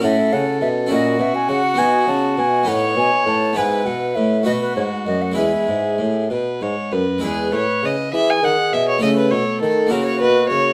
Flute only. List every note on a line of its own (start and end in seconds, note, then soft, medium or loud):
0.04 0.34 E5 medium
0.33 0.61 F#5 medium
0.61 0.68 E5 medium
0.92 1.23 D#5 medium
1.21 1.36 E5 medium
1.35 1.51 G#5 medium
1.49 1.80 F#5 medium
1.78 2.10 G#5 medium
2.09 2.41 A5 medium
2.39 2.70 G#5 medium
2.68 2.97 F#5 medium
2.98 3.27 G#5 medium
3.27 3.59 A5 medium
3.57 3.88 G#5 medium
3.86 4.17 F#5 medium
4.15 4.45 E5 medium
4.46 4.52 D#5 medium
4.61 4.76 B4 medium
4.76 4.83 C#5 medium
5.05 5.23 D#5 medium
5.22 5.35 F#5 medium
5.36 6.28 E5 medium
7.22 8.09 B4 medium
8.12 9.00 G#4 medium
9.02 9.92 A4 medium
9.91 10.73 F#4 medium